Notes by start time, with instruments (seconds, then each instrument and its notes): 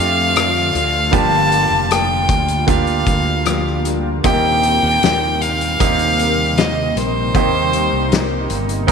Already playing: ambient pad D3 F3 A3 F4, steel-string acoustic guitar F3 D5, grand piano F3 A3 D4 F4 G4 A4, violin F5
0.00 fretless electric bass F2, steel-string acoustic guitar F4 A4
0.35 steel-string acoustic guitar F3 F4 A4 D5, cross-stick, closed hi-hat
0.57 cross-stick
0.73 fretless electric bass D2, steel-string acoustic guitar F4 A4 D5, closed hi-hat
1.11 fretless electric bass G1, steel-string acoustic guitar G2 F3 G3 A#3 D4 G4, grand piano G2 D3 A#3 D4 F4 G4, ambient pad D3 G3 A#3, violin A5, kick, closed hi-hat
1.50 steel-string acoustic guitar F3 A#3 D4 G4, closed hi-hat
1.70 fretless electric bass F1
1.89 steel-string acoustic guitar F3 A#3 D4 G4, violin G5, cross-stick, closed hi-hat
2.29 fretless electric bass D2, kick, closed hi-hat
2.48 closed hi-hat
2.66 grand piano A#3 D4 F4 G4, violin F5, kick, closed hi-hat
2.87 closed hi-hat
3.05 fretless electric bass D2, steel-string acoustic guitar F3 A#3 D4 G4, kick, closed hi-hat
3.45 steel-string acoustic guitar F3 A#3 D4 G4, cross-stick, closed hi-hat
3.67 cross-stick
3.84 steel-string acoustic guitar F3 A#3 D4 G4, closed hi-hat
4.23 fretless electric bass D#2, grand piano A#2 A#3 C4 D#4 G4, steel-string acoustic guitar C3 D#3 A#3 C4 G4 A#4, ambient pad C3 D#4, violin G5, kick, closed hi-hat
4.63 steel-string acoustic guitar A#3 C4 G4 A#4, closed hi-hat
4.83 fretless electric bass D#2
5.02 fretless electric bass D#2, steel-string acoustic guitar A#3 C4 G4 A#4, snare, closed hi-hat
5.41 violin F5, closed hi-hat
5.61 closed hi-hat
5.79 fretless electric bass D#2, grand piano A#3 C4 D#4 G4, kick, closed hi-hat
5.99 closed hi-hat
6.18 steel-string acoustic guitar A#3 C4 G4 A#4, closed hi-hat
6.57 steel-string acoustic guitar A#3 C4 G4 A#4, violin D#5, snare, closed hi-hat
6.96 fretless electric bass A#1, steel-string acoustic guitar A#3 C4 G4 A#4, violin C5, closed hi-hat
7.34 fretless electric bass D#2, ambient pad C3, steel-string acoustic guitar C3 D#3 A#3 C4 G4 A#4, grand piano D#3 A#3 C4 D#4 G4, kick, closed hi-hat
7.72 steel-string acoustic guitar A#3 C4 G4 A#4, closed hi-hat
7.92 fretless electric bass C2
8.10 steel-string acoustic guitar A#3 C4 G4 A#4, snare, closed hi-hat
8.50 fretless electric bass G1, closed hi-hat
8.69 closed hi-hat
8.87 grand piano A#3 C4 D#4 A#4, kick, closed hi-hat